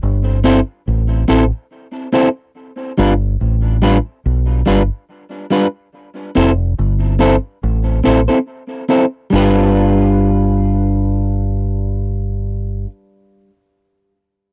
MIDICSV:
0, 0, Header, 1, 3, 480
1, 0, Start_track
1, 0, Tempo, 845189
1, 1451, Time_signature, 4, 2, 24, 8
1, 8251, End_track
2, 0, Start_track
2, 0, Title_t, "Clean electric guitar"
2, 0, Program_c, 0, 27
2, 250, Note_on_c, 0, 60, 86
2, 252, Note_on_c, 0, 64, 88
2, 255, Note_on_c, 0, 69, 80
2, 258, Note_on_c, 0, 72, 91
2, 332, Note_off_c, 0, 60, 0
2, 333, Note_off_c, 0, 64, 0
2, 335, Note_off_c, 0, 69, 0
2, 336, Note_off_c, 0, 72, 0
2, 728, Note_on_c, 0, 60, 85
2, 731, Note_on_c, 0, 64, 82
2, 734, Note_on_c, 0, 69, 86
2, 738, Note_on_c, 0, 72, 82
2, 811, Note_off_c, 0, 60, 0
2, 813, Note_off_c, 0, 64, 0
2, 814, Note_off_c, 0, 69, 0
2, 816, Note_off_c, 0, 72, 0
2, 1208, Note_on_c, 0, 60, 81
2, 1213, Note_on_c, 0, 64, 87
2, 1216, Note_on_c, 0, 69, 78
2, 1217, Note_on_c, 0, 72, 91
2, 1291, Note_off_c, 0, 60, 0
2, 1294, Note_off_c, 0, 64, 0
2, 1295, Note_off_c, 0, 69, 0
2, 1296, Note_off_c, 0, 72, 0
2, 1689, Note_on_c, 0, 55, 74
2, 1693, Note_on_c, 0, 62, 82
2, 1697, Note_on_c, 0, 65, 89
2, 1699, Note_on_c, 0, 71, 84
2, 1772, Note_off_c, 0, 55, 0
2, 1774, Note_off_c, 0, 62, 0
2, 1775, Note_off_c, 0, 65, 0
2, 1777, Note_off_c, 0, 71, 0
2, 2169, Note_on_c, 0, 55, 79
2, 2172, Note_on_c, 0, 62, 86
2, 2175, Note_on_c, 0, 65, 85
2, 2178, Note_on_c, 0, 71, 80
2, 2252, Note_off_c, 0, 55, 0
2, 2253, Note_off_c, 0, 62, 0
2, 2255, Note_off_c, 0, 65, 0
2, 2256, Note_off_c, 0, 71, 0
2, 2646, Note_on_c, 0, 55, 84
2, 2650, Note_on_c, 0, 62, 82
2, 2654, Note_on_c, 0, 65, 81
2, 2656, Note_on_c, 0, 71, 91
2, 2730, Note_off_c, 0, 55, 0
2, 2732, Note_off_c, 0, 62, 0
2, 2734, Note_off_c, 0, 65, 0
2, 2736, Note_off_c, 0, 71, 0
2, 3126, Note_on_c, 0, 55, 73
2, 3132, Note_on_c, 0, 62, 75
2, 3134, Note_on_c, 0, 65, 80
2, 3136, Note_on_c, 0, 71, 96
2, 3211, Note_off_c, 0, 55, 0
2, 3213, Note_off_c, 0, 62, 0
2, 3214, Note_off_c, 0, 65, 0
2, 3216, Note_off_c, 0, 71, 0
2, 3608, Note_on_c, 0, 60, 79
2, 3610, Note_on_c, 0, 64, 88
2, 3615, Note_on_c, 0, 69, 83
2, 3617, Note_on_c, 0, 72, 93
2, 3691, Note_off_c, 0, 60, 0
2, 3693, Note_off_c, 0, 64, 0
2, 3695, Note_off_c, 0, 69, 0
2, 3696, Note_off_c, 0, 72, 0
2, 4084, Note_on_c, 0, 60, 82
2, 4087, Note_on_c, 0, 64, 91
2, 4091, Note_on_c, 0, 69, 98
2, 4094, Note_on_c, 0, 72, 99
2, 4170, Note_off_c, 0, 60, 0
2, 4171, Note_off_c, 0, 64, 0
2, 4173, Note_off_c, 0, 69, 0
2, 4175, Note_off_c, 0, 72, 0
2, 4565, Note_on_c, 0, 60, 78
2, 4569, Note_on_c, 0, 64, 85
2, 4573, Note_on_c, 0, 69, 84
2, 4576, Note_on_c, 0, 72, 85
2, 4650, Note_off_c, 0, 60, 0
2, 4652, Note_off_c, 0, 64, 0
2, 4654, Note_off_c, 0, 69, 0
2, 4656, Note_off_c, 0, 72, 0
2, 4703, Note_on_c, 0, 72, 62
2, 4707, Note_on_c, 0, 69, 58
2, 4709, Note_on_c, 0, 64, 53
2, 4714, Note_on_c, 0, 60, 51
2, 4755, Note_off_c, 0, 72, 0
2, 4757, Note_off_c, 0, 69, 0
2, 4758, Note_off_c, 0, 64, 0
2, 4760, Note_off_c, 0, 60, 0
2, 5047, Note_on_c, 0, 60, 72
2, 5051, Note_on_c, 0, 64, 75
2, 5055, Note_on_c, 0, 69, 86
2, 5058, Note_on_c, 0, 72, 84
2, 5131, Note_off_c, 0, 60, 0
2, 5133, Note_off_c, 0, 64, 0
2, 5135, Note_off_c, 0, 69, 0
2, 5137, Note_off_c, 0, 72, 0
2, 5283, Note_on_c, 0, 55, 78
2, 5295, Note_on_c, 0, 62, 82
2, 5304, Note_on_c, 0, 65, 83
2, 5314, Note_on_c, 0, 71, 96
2, 7303, Note_off_c, 0, 55, 0
2, 7314, Note_off_c, 0, 62, 0
2, 7323, Note_off_c, 0, 65, 0
2, 7333, Note_off_c, 0, 71, 0
2, 8251, End_track
3, 0, Start_track
3, 0, Title_t, "Fingered electric bass"
3, 0, Program_c, 1, 33
3, 17, Note_on_c, 1, 31, 92
3, 341, Note_off_c, 1, 31, 0
3, 497, Note_on_c, 1, 33, 90
3, 704, Note_off_c, 1, 33, 0
3, 736, Note_on_c, 1, 33, 85
3, 851, Note_off_c, 1, 33, 0
3, 1697, Note_on_c, 1, 31, 94
3, 1904, Note_off_c, 1, 31, 0
3, 1936, Note_on_c, 1, 33, 85
3, 2261, Note_off_c, 1, 33, 0
3, 2417, Note_on_c, 1, 35, 95
3, 2624, Note_off_c, 1, 35, 0
3, 2657, Note_on_c, 1, 31, 83
3, 2772, Note_off_c, 1, 31, 0
3, 3618, Note_on_c, 1, 29, 95
3, 3824, Note_off_c, 1, 29, 0
3, 3855, Note_on_c, 1, 31, 97
3, 4180, Note_off_c, 1, 31, 0
3, 4335, Note_on_c, 1, 33, 89
3, 4543, Note_off_c, 1, 33, 0
3, 4580, Note_on_c, 1, 33, 85
3, 4694, Note_off_c, 1, 33, 0
3, 5299, Note_on_c, 1, 31, 91
3, 7296, Note_off_c, 1, 31, 0
3, 8251, End_track
0, 0, End_of_file